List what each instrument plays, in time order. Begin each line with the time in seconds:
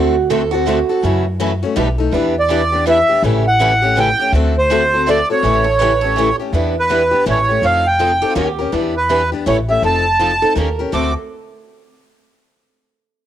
Already playing: upright bass D2, steel-string acoustic guitar D3 A3 C4 F#4 A4
0.30 steel-string acoustic guitar D3 A3 C4 F#4 A4
0.52 steel-string acoustic guitar C4 F#4 A4
0.67 steel-string acoustic guitar D3 A3 C4 F#4 A4
0.89 steel-string acoustic guitar C4 F#4 A4
1.02 upright bass F#2, steel-string acoustic guitar C#3 E3 F#3 A3 C#4 E4 F#4 A4
1.40 steel-string acoustic guitar C#3 E3 F#3 A3 C#4 E4 F#4 A4
1.63 steel-string acoustic guitar A3 C#4 F#4
1.76 upright bass B1, steel-string acoustic guitar B2 G3 A3 D#4 G4 A4 B4
1.98 steel-string acoustic guitar A3 D#4 A4
2.12 upright bass E2, steel-string acoustic guitar E3 G3 B3 D4 E4 G4 B4
2.40 accordion D5
2.49 steel-string acoustic guitar E3 G3 B3 D4 E4 G4 B4
2.72 steel-string acoustic guitar B3 D4 G4
2.86 steel-string acoustic guitar E3 G3 B3 D4 E4 G4 B4, accordion E5
3.09 steel-string acoustic guitar B3 D4 G4
3.23 upright bass A1, steel-string acoustic guitar C#3 E3 G3 A3 C#4 E4 G4 A4
3.48 accordion F#5
3.60 steel-string acoustic guitar C#3 E3 G3 A3 C#4 E4 G4 A4
3.82 steel-string acoustic guitar A3 C#4 G4
3.96 steel-string acoustic guitar C#3 E3 G3 A3 C#4 E4 G4 A4, accordion G5
4.20 steel-string acoustic guitar A3 C#4 G4
4.32 upright bass D2, steel-string acoustic guitar D3 A3 C4 F#4 A4
4.58 accordion C5
4.71 steel-string acoustic guitar D3 A3 C4 F#4 A4
4.94 steel-string acoustic guitar C4 F#4 A4
5.08 steel-string acoustic guitar D3 A3 C4 F#4 A4, accordion D5
5.30 steel-string acoustic guitar C4 F#4 A4, accordion C#5
5.43 upright bass A1, steel-string acoustic guitar C#3 E3 G3 A3 C#4 E4 G4 A4
5.64 steel-string acoustic guitar A4
5.79 steel-string acoustic guitar C#3 E3 G3 A3 C#4 E4 G4 A4 B4
6.01 steel-string acoustic guitar C#4 G4 A4
6.06 steel-string acoustic guitar A3
6.17 steel-string acoustic guitar C#3 E3 G3 A3 C#4 E4 G4 A4
6.40 steel-string acoustic guitar A3 C#4 G4
6.53 upright bass E2, steel-string acoustic guitar E3 G3 B3 D4 E4 G4 B4
6.79 accordion B4
6.89 steel-string acoustic guitar E3 G3 B3 D4 E4 G4 B4
7.11 steel-string acoustic guitar B3 D4 G4
7.26 upright bass A1, steel-string acoustic guitar C#3 E3 G3 A3 C#4 E4 G4 A4
7.30 accordion C#5
7.48 steel-string acoustic guitar A3 C#4 G4
7.62 upright bass F1, steel-string acoustic guitar F3 C4 D#4 A4, accordion F5
7.87 accordion G5
7.99 steel-string acoustic guitar F3 C4 D#4 A4
8.22 steel-string acoustic guitar C4 D#4 G4 A4
8.30 steel-string acoustic guitar F4
8.35 upright bass D#2, steel-string acoustic guitar D#3 A#3 C#4 G4 A#4
8.59 steel-string acoustic guitar C#4 G4 A#4
8.72 upright bass E2, steel-string acoustic guitar E3 G3 B3 D4 E4 G4 B4
8.97 accordion B4
9.10 steel-string acoustic guitar E3 G3 B3 D4 E4 G4 B4
9.32 steel-string acoustic guitar B3 D4 G4
9.46 upright bass A1, steel-string acoustic guitar C#3 E3 G3 A3 C#4 E4 G4 A4, accordion C#5
9.69 steel-string acoustic guitar A3 C#4 G4, accordion E5
9.82 upright bass F1, steel-string acoustic guitar F3 C4 D#4 A4, accordion A5
10.20 steel-string acoustic guitar F3 C4 D#4 F4 A4
10.42 steel-string acoustic guitar C4 D#4 A4
10.56 upright bass D#2, steel-string acoustic guitar D#3 A#3 C#4 G4 A#4
10.79 steel-string acoustic guitar C#4 G4 A#4
10.92 upright bass D2, steel-string acoustic guitar D3 A3 C4 F#4 A4, accordion D6